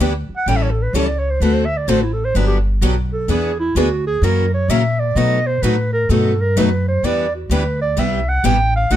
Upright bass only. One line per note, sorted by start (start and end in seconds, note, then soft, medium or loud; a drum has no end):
0.00 0.27 D2 medium
0.29 muted upright bass stroke soft
0.46 0.92 A1 medium
0.93 1.39 C#2 medium
1.40 1.86 D2 medium
1.87 2.33 A1 medium
2.35 2.80 G1 medium
2.81 3.27 B1 medium
3.28 3.74 E2 medium
3.75 4.21 D2 medium
4.22 4.67 F#2 medium
4.68 5.14 A#2 medium
5.15 5.61 B2 medium
5.62 6.08 A2 medium
6.09 6.55 G2 medium
6.56 7.02 F#2 medium
7.03 7.48 E2 medium
7.50 7.95 D2 medium
7.96 8.42 C2 medium
8.44 8.89 A1 medium
8.90 8.96 B1 medium